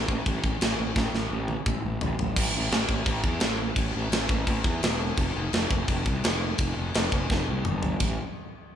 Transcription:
0.08 0.20 A1 medium
0.08 kick medium
0.26 0.38 A1 medium
0.26 kick medium
0.26 crash medium
0.44 0.56 A1 loud
0.44 kick medium
0.61 0.73 A1 medium
0.61 snare loud
0.61 crash medium
0.80 0.91 A1 medium
0.96 1.08 A1 loud
0.96 kick loud
0.96 snare medium
1.14 1.26 A1 medium
1.14 snare medium
1.31 1.55 A1 medium
1.48 high tom medium
1.66 1.78 A1 medium
1.66 kick medium
1.66 mid tom medium
1.85 1.96 A1 medium
2.01 2.14 A1 loud
2.01 floor tom loud
2.19 2.32 A1 medium
2.19 floor tom medium
2.36 2.51 A1 medium
2.36 kick loud
2.36 crash loud
2.36 crash medium
2.55 2.69 A1 medium
2.71 2.86 A1 loud
2.71 snare loud
2.71 crash medium
2.89 3.03 A1 medium
2.89 kick medium
3.06 3.21 A1 loud
3.06 kick medium
3.06 crash medium
3.24 3.38 E2 loud
3.24 kick medium
3.40 3.70 A1 medium
3.40 snare loud
3.40 crash medium
3.76 3.91 A1 loud
3.76 kick loud
3.76 crash medium
3.96 4.09 A1 medium
4.12 4.26 A1 loud
4.12 snare loud
4.12 crash medium
4.29 4.44 A1 medium
4.29 kick medium
4.47 4.62 A1 medium
4.47 kick medium
4.47 crash medium
4.64 4.79 E2 medium
4.64 kick medium
4.83 5.11 E1 medium
4.83 snare loud
4.83 crash medium
5.17 5.32 F1 loud
5.17 kick loud
5.17 crash medium
5.36 5.50 F1 medium
5.53 5.67 F1 medium
5.53 snare loud
5.53 crash medium
5.71 5.85 F1 medium
5.71 kick medium
5.88 6.03 F1 loud
5.88 kick medium
5.88 crash medium
6.06 6.20 C2 loud
6.06 kick medium
6.24 6.52 F1 medium
6.24 snare loud
6.24 crash medium
6.58 6.73 F1 loud
6.58 kick loud
6.58 crash medium
6.77 6.91 F1 medium
6.94 7.09 F1 loud
6.94 snare loud
6.94 crash medium
7.12 7.26 F1 medium
7.12 kick medium
7.30 7.44 F1 loud
7.30 kick medium
7.30 snare medium
7.49 7.62 C2 medium
7.65 7.94 G1 medium
7.65 mid tom loud
7.83 floor tom loud
8.00 8.17 A1 loud
8.00 kick loud
8.00 crash medium

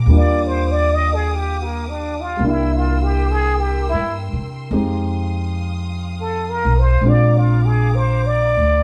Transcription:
0.00 2.37 D6 medium
0.06 2.35 D#2 medium
0.06 2.35 G3 medium
0.06 2.38 A#3 soft
0.06 2.39 G4 medium
0.06 2.39 D#6 medium
0.10 2.41 D4 soft
0.10 2.42 F4 medium
0.10 2.39 F5 medium
0.16 0.48 D5 medium
0.47 0.73 C5 medium
0.72 0.96 D5 medium
0.94 1.16 D#5 loud
1.15 1.37 G#4 medium
1.35 1.64 G4 medium
1.63 1.90 A#3 medium
1.89 2.22 D4 medium
2.21 2.51 F4 medium
2.37 3.90 C2 medium
2.37 4.70 G3 soft
2.37 4.72 A#3 soft
2.37 4.69 A#4 medium
2.37 4.69 G5 medium
2.37 7.00 C6 medium
2.37 4.69 E6 medium
2.44 4.74 D4 soft
2.44 4.76 E4 medium
2.50 2.78 E4 medium
2.77 3.05 F4 medium
3.03 3.33 G4 medium
3.32 3.61 G#4 medium
3.59 3.89 G4 medium
3.89 4.15 E4 medium
3.93 4.30 G2 medium
4.33 4.69 C3 medium
4.71 6.62 F2 medium
4.71 7.01 G#3 medium
4.71 7.02 C4 medium
4.71 7.04 D#4 soft
4.71 7.04 G4 medium
4.71 8.83 F5 medium
4.71 7.01 D#6 medium
6.21 6.51 A4 medium
6.49 6.81 A#4 medium
6.65 7.00 B1 medium
6.79 7.11 C5 medium
7.01 8.53 A#1 medium
7.01 8.83 G#3 soft
7.01 8.83 C4 soft
7.01 8.83 A#5 medium
7.01 8.83 D6 medium
7.05 8.83 D4 soft
7.05 8.83 F4 medium
7.05 7.40 D5 medium
7.38 7.67 F4 medium
7.65 7.97 G#4 medium
7.95 8.28 C5 medium
8.27 8.83 D5 medium
8.57 8.83 D2 medium

